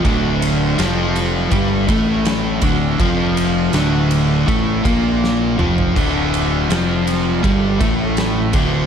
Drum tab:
CC |----------------|----------------|x---------------|
RD |x-x-x-x-x-x-x-x-|x-x-x-x-x-x-----|--x-x-x-x-x-x-x-|
SD |----o-------o---|----o-------o---|----o-------o---|
T2 |----------------|--------------o-|----------------|
FT |----------------|---------------o|----------------|
BD |o-------o-o---o-|o-------o-o-----|o-------o-o---o-|